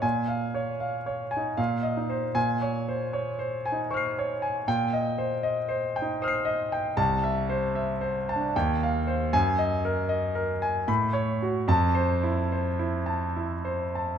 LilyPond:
<<
  \new Staff \with { instrumentName = "Grand piano" } { \time 3/4 \key ees \mixolydian \tempo 4 = 77 << { aes''8 r4. f''8 r8 | aes''8 r4. <des''' f''' c''''>4 | g''8 r4. <ees''' f''' c''''>4 | \key f \lydian a''8 r4. g''8 r8 |
gis''8 r4. b''8 r8 | a''8 r2 r8 | } \\ { \tuplet 3/2 { r8 f''8 des''8 f''8 des''8 aes''8 r8 ees''8 c''8 } | \tuplet 3/2 { r8 des''8 c''8 des''8 c''8 aes''8 c''8 des''8 aes''8 } | \tuplet 3/2 { r8 ees''8 c''8 ees''8 c''8 g''8 c''8 ees''8 g''8 } | \tuplet 3/2 { r8 e''8 c''8 e''8 c''8 a''8 r8 f''8 c''8 } |
\tuplet 3/2 { r8 dis''8 ais'8 dis''8 ais'8 gis''8 r8 cis''8 fis'8 } | \tuplet 3/2 { r8 c''8 e'8 c''8 e'8 a''8 e'8 c''8 a''8 } | } >> }
  \new Staff \with { instrumentName = "Grand piano" } { \clef bass \time 3/4 \key ees \mixolydian bes,4.~ bes,16 ees'16 bes,8 ees'8 | bes,4.~ bes,16 ees'16 r4 | bes,4.~ bes,16 ees'16 r4 | \key f \lydian c,4.~ c,16 d'16 ees,4 |
fis,2 a,4 | f,2. | }
>>